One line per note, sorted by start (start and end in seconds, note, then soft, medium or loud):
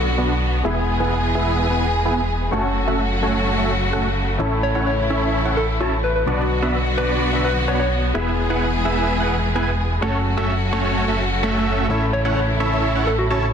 0.00 0.62 B1 medium
0.00 0.61 B2 medium
0.00 0.63 D3 medium
0.00 0.62 F#3 medium
0.00 0.63 F#3 medium
0.00 0.62 B3 medium
0.00 2.49 B3 medium
0.00 0.62 D4 medium
0.00 0.63 F#4 medium
0.18 0.33 B3 medium
0.18 0.33 D4 medium
0.18 0.33 F#4 medium
0.18 0.33 B4 medium
0.18 0.33 F#5 medium
0.63 2.50 E1 medium
0.63 2.50 E3 medium
0.63 2.49 G#3 medium
0.63 2.50 G#3 medium
0.63 2.49 B3 medium
0.63 0.80 B3 medium
0.63 0.80 E4 medium
0.63 2.50 E4 medium
0.63 0.80 G#4 medium
0.63 2.50 G#4 medium
0.63 0.80 B4 medium
0.63 0.80 E5 medium
1.00 1.15 B3 medium
1.00 1.15 E4 medium
1.00 1.15 G#4 medium
1.00 1.15 B4 medium
1.00 1.15 F#5 loud
1.35 1.67 B3 medium
1.35 1.67 E4 medium
1.35 1.67 G#4 medium
1.35 1.67 B4 medium
1.35 1.67 E5 medium
1.70 1.85 B3 medium
1.70 1.85 E4 medium
1.70 1.85 G#4 medium
1.70 1.85 B4 medium
1.70 1.85 F#5 medium
2.05 2.20 B3 medium
2.05 2.20 E4 medium
2.05 2.20 G#4 medium
2.05 2.20 B4 medium
2.05 2.20 G#5 medium
2.51 4.37 F#1 medium
2.51 6.23 C#3 medium
2.51 4.38 F#3 medium
2.51 4.36 A3 medium
2.51 6.23 A3 medium
2.51 2.67 A3 medium
2.51 4.37 C#4 medium
2.51 2.67 C#4 medium
2.51 4.38 F#4 medium
2.51 2.67 F#4 medium
2.51 4.37 F#4 medium
2.51 2.67 A4 medium
2.51 4.38 A4 medium
2.51 2.67 C#5 medium
2.87 3.02 A3 medium
2.87 3.02 C#4 medium
2.87 3.02 F#4 medium
2.87 3.02 A4 medium
2.87 3.02 E5 loud
3.23 3.55 A3 medium
3.23 3.55 C#4 medium
3.23 3.55 F#4 medium
3.23 3.55 A4 medium
3.23 3.55 C#5 medium
3.58 3.73 A3 medium
3.58 3.73 C#4 medium
3.58 3.73 F#4 medium
3.58 3.73 A4 medium
3.58 3.73 E5 medium
3.93 4.08 A3 medium
3.93 4.08 C#4 medium
3.93 4.08 F#4 medium
3.93 4.08 A4 medium
3.93 4.08 F#5 medium
4.39 6.25 A1 medium
4.39 6.24 A2 medium
4.39 6.25 E3 medium
4.39 6.24 A3 medium
4.39 4.55 C#4 medium
4.39 6.24 C#4 medium
4.39 4.55 E4 medium
4.39 6.25 E4 medium
4.39 4.55 A4 medium
4.39 6.25 A4 medium
4.39 4.55 C#5 medium
4.39 4.55 E5 medium
4.63 4.71 C#5 medium
4.75 4.90 C#4 loud
4.75 4.90 E4 medium
4.75 4.90 A4 medium
4.75 4.82 C#5 medium
4.75 4.90 C#5 medium
4.75 4.90 F#5 loud
4.87 5.22 C#5 medium
5.10 5.42 C#4 medium
5.10 5.42 E4 medium
5.10 5.42 A4 medium
5.10 5.42 C#5 medium
5.10 5.42 E5 medium
5.45 5.60 C#4 medium
5.45 5.60 E4 medium
5.45 5.60 A4 medium
5.45 5.60 C#5 medium
5.45 5.60 F#5 medium
5.57 5.66 A4 medium
5.80 5.95 C#4 medium
5.80 5.95 E4 medium
5.80 5.93 F#4 medium
5.80 5.95 A4 medium
5.80 5.95 C#5 medium
5.80 5.95 A5 medium
6.04 6.11 B4 medium
6.16 6.23 B4 medium
6.26 8.12 B1 medium
6.26 8.11 B2 medium
6.26 8.13 D3 medium
6.26 8.12 F#3 medium
6.26 8.13 F#3 medium
6.26 6.42 B3 medium
6.26 8.12 B3 medium
6.26 9.99 B3 medium
6.26 6.42 D4 medium
6.26 8.12 D4 medium
6.26 6.42 F#4 medium
6.26 8.13 F#4 medium
6.26 6.42 B4 medium
6.26 6.42 D5 medium
6.62 6.77 B3 medium
6.62 6.77 D4 medium
6.62 6.77 F#4 medium
6.62 6.77 B4 medium
6.62 6.77 E5 loud
6.97 7.30 B3 medium
6.97 7.30 D4 medium
6.97 7.30 F#4 medium
6.97 7.30 B4 medium
6.97 7.10 B4 medium
6.97 7.30 D5 medium
7.33 7.48 B3 medium
7.33 7.48 D4 medium
7.33 7.48 F#4 medium
7.33 7.48 B4 medium
7.33 7.48 E5 medium
7.44 7.57 B4 medium
7.68 7.83 B3 medium
7.68 7.83 D4 medium
7.68 7.83 F#4 medium
7.68 7.83 B4 medium
7.68 7.75 C#5 medium
7.68 7.83 F#5 medium
7.80 7.87 C#5 medium
8.14 10.00 E1 medium
8.14 10.00 E3 medium
8.14 9.99 G#3 medium
8.14 10.00 G#3 medium
8.14 9.99 B3 medium
8.14 8.30 B3 medium
8.14 8.30 E4 medium
8.14 10.00 E4 medium
8.14 8.30 G#4 medium
8.14 10.00 G#4 medium
8.14 8.30 B4 medium
8.14 8.30 E5 medium
8.50 8.65 B3 loud
8.50 8.65 E4 medium
8.50 8.65 G#4 medium
8.50 8.65 B4 medium
8.50 8.65 F#5 loud
8.85 9.17 B3 medium
8.85 9.17 E4 medium
8.85 9.17 G#4 medium
8.85 9.17 B4 medium
8.85 9.17 E5 medium
9.20 9.35 B3 medium
9.20 9.35 E4 medium
9.20 9.35 G#4 medium
9.20 9.35 B4 medium
9.20 9.35 F#5 medium
9.55 9.70 B3 medium
9.55 9.70 E4 medium
9.55 9.70 G#4 medium
9.55 9.70 B4 medium
9.55 9.70 G#5 medium
10.01 11.87 F#1 medium
10.01 13.53 C#3 medium
10.01 11.88 F#3 medium
10.01 11.86 A3 medium
10.01 10.17 A3 medium
10.01 13.53 A3 medium
10.01 11.87 C#4 medium
10.01 10.17 C#4 medium
10.01 10.17 F#4 medium
10.01 11.88 F#4 medium
10.01 11.87 F#4 medium
10.01 10.17 A4 medium
10.01 11.88 A4 medium
10.01 10.17 C#5 medium
10.37 10.52 A3 loud
10.37 10.52 C#4 medium
10.37 10.52 F#4 medium
10.37 10.52 A4 medium
10.37 10.52 E5 loud
10.72 11.05 A3 medium
10.72 11.05 C#4 medium
10.72 11.05 F#4 medium
10.72 11.05 A4 medium
10.72 11.05 C#5 medium
11.08 11.23 A3 medium
11.08 11.23 C#4 medium
11.08 11.23 F#4 medium
11.08 11.23 A4 medium
11.08 11.23 E5 medium
11.43 11.87 A3 medium
11.43 11.87 C#4 medium
11.43 11.87 F#4 medium
11.43 11.87 A4 medium
11.43 11.87 E5 loud
11.88 13.53 A1 medium
11.88 13.53 A2 medium
11.88 13.53 E3 medium
11.88 13.53 A3 medium
11.88 13.53 C#4 medium
11.88 12.05 C#4 medium
11.88 12.05 E4 medium
11.88 13.53 E4 medium
11.88 12.05 A4 medium
11.88 13.53 A4 medium
11.88 12.05 C#5 medium
11.88 12.05 E5 medium
12.13 12.21 C#5 medium
12.25 12.40 C#4 medium
12.25 12.40 E4 medium
12.25 12.40 A4 medium
12.25 12.32 C#5 medium
12.25 12.40 C#5 medium
12.25 12.40 F#5 loud
12.37 12.72 C#5 medium
12.60 12.92 C#4 medium
12.60 12.92 E4 medium
12.60 12.92 A4 medium
12.60 12.92 C#5 medium
12.60 12.92 E5 medium
12.95 13.10 C#4 medium
12.95 13.10 E4 medium
12.95 13.10 A4 medium
12.95 13.10 C#5 medium
12.95 13.10 F#5 medium
13.07 13.16 A4 medium
13.19 13.26 F#4 medium
13.30 13.45 C#4 medium
13.30 13.45 E4 medium
13.30 13.38 F#4 medium
13.30 13.45 A4 medium
13.30 13.45 C#5 medium
13.30 13.45 A5 medium